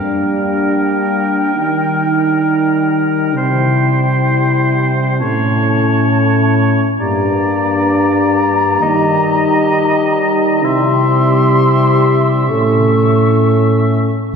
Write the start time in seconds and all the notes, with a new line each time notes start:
Already playing: G3 A#3 D4 A#4 G5
1.54 G3 D#4
1.58 D#3
3.36 C3 E4 C5 G5
5.18 A2 A3 C#4 C#5 A5
6.99 G2 A#3 D4 G4 D5 A#5
8.80 D#3 G3 D#4 D#5
10.62 C3 E4 G4 E5 C6
12.48 A2 A3 C#4 A4 C#6